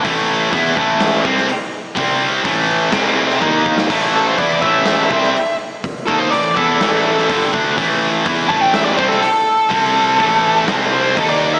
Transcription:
<<
  \new Staff \with { instrumentName = "Lead electric guitar" } { \time 4/4 \key a \minor \tempo 4 = 124 r1 | r1 | r8 a'16 c''16 d''8 e''2 r8 | r8 a'16 c''16 d''8 a'2 r8 |
r4. a''16 g''16 e''16 d''16 c''16 a'16 a'4~ | a'2 r8 c''8 a'16 d''8 e''16 | }
  \new Staff \with { instrumentName = "Distorted electric guitar" } { \clef bass \time 4/4 \key a \minor <a, e a>4 <e b e'>8 <a, e a>4 <c g c'>8 r4 | <c g c'>4 <a, e a>4 <c g c'>4 <dis ais dis'>4 | <a, e a>4 <e b e'>8 <a, e a>4 <c g c'>8 r4 | r8 <dis bes dis'>8 <a, e>8 <e b e'>8 <a, e a>4 <g, d g>8 <d a d'>8 |
<a, e a>4 <e b e'>8 <a, e a>4 <c g c'>8 r4 | <c g c'>4 <a, e a>4 <c g c'>4 <dis ais dis'>4 | }
  \new Staff \with { instrumentName = "Distorted electric guitar" } { \clef bass \time 4/4 \key a \minor <a, e a>4 <e b e'>8 <a, e a>4 <c g c'>8 r4 | <c g c'>4 <a, e a>4 <c g c'>4 <dis ais dis'>4 | <a, e a>4 <e b e'>8 <a, e a>4 <c g c'>8 r4 | r8 <dis bes dis'>8 <a, e>8 <e b e'>8 <a, e a>4 <g, d g>8 <d a d'>8 |
<a, e a>4 <e b e'>8 <a, e a>4 <c g c'>8 r4 | <c g c'>4 <a, e a>4 <c g c'>4 <dis ais dis'>4 | }
  \new Staff \with { instrumentName = "Picked electric bass" } { \clef bass \time 4/4 \key a \minor a,,4 e,8 a,,4 c,8 r4 | c,4 a,,4 c,4 dis,4 | a,,4 e,8 a,,4 c,8 r4 | r8 dis,8 a,,8 e,8 a,,4 g,,8 d,8 |
a,,4 e,8 a,,4 c,8 r4 | c,4 a,,4 c,4 dis,4 | }
  \new DrumStaff \with { instrumentName = "Drums" } \drummode { \time 4/4 <hho bd>4 <hho bd>8 bd8 <hho sn>8 bd16 sn16 hho4 | <hho bd>4 <hho bd>4 <hho bd sn>8. sn16 bd8 bd16 sn16 | <cymc bd>4 <hho bd>8 bd8 <hho sn>8 bd16 sn16 hho4 | <hho bd>8 bd8 hho8 bd8 <hho sn>8. sn16 <hho bd>8 bd8 |
<hho bd>4 <hho bd>8 bd8 <hho sn>8 bd16 sn16 hho4 | <hho bd>4 <hho bd>4 <hho bd sn>4 <hho bd>4 | }
>>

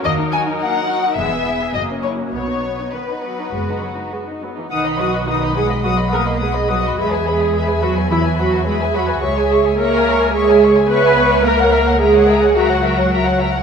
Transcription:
<<
  \new Staff \with { instrumentName = "Violin section" } { \time 4/4 \key b \major \tempo 4 = 106 dis''8 gis''8 fis''4 e''4 dis''8 cis''8 | cis''4 b'2 r4 | dis'''16 b''16 dis'''16 b''16 dis'''16 b''16 dis'''16 b''16 dis'''16 b''16 dis'''16 b''16 dis'''16 b''16 dis'''16 b''16 | b''16 gis''16 b''16 gis''16 b''16 gis''16 b''16 gis''16 b''16 gis''16 b''16 gis''16 b''16 gis''16 b''16 gis''16 |
cis'''16 gis''16 cis'''16 gis''16 cis'''16 gis''16 cis'''16 gis''16 cis'''16 gis''16 cis'''16 gis''16 cis'''16 gis''16 cis'''16 gis''16 | ais''16 fis''16 ais''16 fis''16 ais''16 fis''16 ais''16 fis''16 ais''16 fis''16 ais''16 fis''16 ais''16 fis''16 ais''16 fis''16 | }
  \new Staff \with { instrumentName = "Violin section" } { \time 4/4 \key b \major << { ais'2 gis'2~ | gis'4 fis'2~ fis'8 r8 | <b' fis''>16 dis''16 <b' fis''>16 dis''16 <b' fis''>16 dis''16 <b' fis''>16 dis''16 <b' fis''>16 dis''16 <b' fis''>16 dis''16 <b' fis''>16 dis''16 <b' fis''>16 dis''16 | <b' e''>16 <b' e''>16 <b' e''>16 <b' e''>16 <b' e''>16 <b' e''>16 <b' e''>16 <b' e''>16 <b' e''>16 <b' e''>16 <b' e''>16 <b' e''>16 <b' e''>16 <b' e''>16 <b' e''>16 <b' e''>16 |
<cis'' e''>16 <cis'' e''>16 <cis'' e''>16 <cis'' e''>16 <cis'' e''>16 <cis'' e''>16 <cis'' e''>16 <cis'' e''>16 <cis'' e''>16 <cis'' e''>16 <cis'' e''>16 <cis'' e''>16 <cis'' e''>16 <cis'' e''>16 <cis'' e''>16 <cis'' e''>16 | <ais' e''>16 <cis'' fis''>16 <ais' e''>16 <cis'' fis''>16 <ais' e''>16 <cis'' fis''>16 <ais' e''>16 <cis'' fis''>16 <ais' e''>16 <cis'' fis''>16 <ais' e''>16 <cis'' fis''>16 <ais' e''>16 <cis'' fis''>16 <ais' e''>16 <cis'' fis''>16 | } \\ { ais16 dis'16 fis'16 dis'16 ais16 dis'16 fis'16 dis'16 gis16 b16 e'16 gis'16 ais16 cis'16 e'16 cis'16 | b16 dis'16 b16 dis'16 b16 dis'16 b16 dis'16 b16 dis'16 b16 dis'16 b16 dis'16 b16 dis'16 | r1 | r1 |
r1 | r1 | } >> }
  \new Staff \with { instrumentName = "Viola section" } { \time 4/4 \key b \major << { dis'2 b4 ais4 | b4 dis8 fis8 gis8 fis8 gis8 fis16 e16 | dis'8 fis'8 dis'8 gis'8 fis'8 ais'8 gis'8 fis'8 | gis'8 gis'4 fis'8 e'8 fis'8 gis'8 fis'8 |
gis'4 ais'4 gis'4 b'4 | ais'4 gis'4 fis'4. r8 | } \\ { fis2 b4 fis4~ | fis4 r2. | r1 | r1 |
r1 | r1 | } >> }
  \new Staff \with { instrumentName = "Cello section" } { \clef bass \time 4/4 \key b \major dis,4 r4 e,4 fis,4 | b,4 r4 fis,4 r4 | dis8 fis8 dis8 gis8 fis8 ais8 gis8 fis8 | gis8 gis4 fis8 e8 fis8 gis8 fis8 |
gis4 ais4 gis4 b4 | ais4 gis4 fis4. r8 | }
  \new Staff \with { instrumentName = "Double bass section" } { \clef bass \time 4/4 \key b \major dis,4 r4 e,,4 fis,,4 | b,,4 r4 fis,,4 r4 | b,,1 | e,1 |
cis,1~ | cis,1 | }
>>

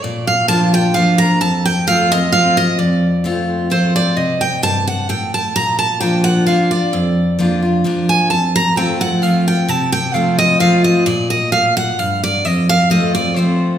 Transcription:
<<
  \new Staff \with { instrumentName = "Steel-string acoustic guitar" } { \time 3/4 \key f \mixolydian \tempo 4 = 130 d''8 f''8 a''8 g''8 f''8 bes''8 | a''8 g''8 f''8 ees''8 f''8 ees''8 | d''4 r4 c''8 d''8 | ees''8 g''8 a''8 ges''8 g''8 a''8 |
bes''8 a''8 g''8 ges''8 f''8 d''8~ | d''2 r8 aes''8 | a''8 bes''8 g''8 ges''8 f''8 g''8 | a''8 g''8 f''8 ees''8 f''8 ees''8 |
d''8 ees''8 f''8 ges''8 f''8 d''8 | ees''8 f''8 ees''8 d''8 c''8. r16 | }
  \new Staff \with { instrumentName = "Steel-string acoustic guitar" } { \time 3/4 \key f \mixolydian << { r4 <f bes d' f'>8 <d' f'>8 <f bes d' f'>4 | r4 <f a c' f'>8 <c' f'>8 <f a c' f'>4 | r4 <f a c' f'>4 <f a c' f'>4 | r2. |
r4 <f bes d' f'>4 <f bes d' f'>8 <d' f'>8 | r4 <f bes d' f'>8 <d' f'>8 <f bes d' f'>4 | r4 <f a c' f'>4 <f a c' f'>4 | r4 <f a c' f'>4 <f a c' f'>4 |
r2. | r4 <f a c' f'>8 <c' f'>8 <f a c' f'>4 | } \\ { bes,2 r4 | f,2 r4 | f,2 r4 | c4 g,4 a,4 |
bes,2 r4 | f,2 r4 | f,2 r4 | c2 r4 |
bes,4 a,4 g,4 | f,2 r4 | } >> }
>>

